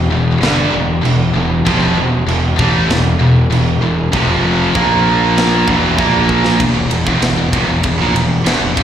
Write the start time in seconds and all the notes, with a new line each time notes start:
0.11 E1 E2 B2
0.41 G1 G2 D3 G3, snare, china
0.71 E1 E2 B2
1.01 E1 E2 B2, china
1.34 E1 E2 B2
1.65 F1 F2 C3 F3, kick, china
1.95 E1 E2 B2
2.27 E1 E2 B2, china
2.56 A1 A2 E3 A3, kick
2.87 E1 E2 B2, snare, china
2.92 E2 B2
3.19 E1 E2 B2
3.50 E1 E2 B2, china
3.81 E1 E2 B2
4.12 F1 F2 C3 F3, kick, china
4.74 A#1 A#2 F3 A#3, kick, china
5.38 snare, china
5.68 E1 E2 B2 E3, kick
5.98 A#1 A#2 F3 A#3, kick, china
6.29 kick
6.44 snare
6.59 E1 E2 B2, kick, ride
6.74 E1 E2 B2
6.89 E1 E2 B2, ride
7.07 E1 E2 B2, kick
7.21 E1 E2 B2, snare, ride
7.37 E1 E2 B2
7.52 F1 F2 C3, kick, ride
7.69 E1 E2 B2
7.83 E1 E2 B2, kick, ride
8.00 A#1 A#2 F3
8.15 E1 E2 B2, ride
8.46 E1 E2 B2, snare, ride
8.62 E1 E2 B2
8.77 F1 F2 C3, kick, ride